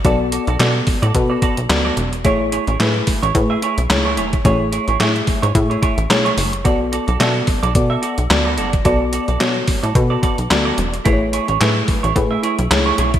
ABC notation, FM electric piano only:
X:1
M:4/4
L:1/16
Q:"Swing 16ths" 1/4=109
K:Bdor
V:1 name="FM electric piano"
[B,FAd]3 z [B,FAd]3 z [B,FAB]3 z [B,FAd]3 z | [A,EGc]3 z [A,EGB]3 z [A,EGB]3 z [A,EGc]3 z | [A,EGc]3 z [A,EGe]3 z [A,EGe]3 z [A,EGc]3 z | [B,FAd]3 z [B,FAd]3 z [B,FAd]3 z [B,FAd]3 z |
[B,FAd]3 z [B,FAc]3 z [B,FAB]3 z [B,FAd]3 z | [A,EGBc]3 z [A,EGB]3 z [A,EGB]3 z [A,EGc]3 z |]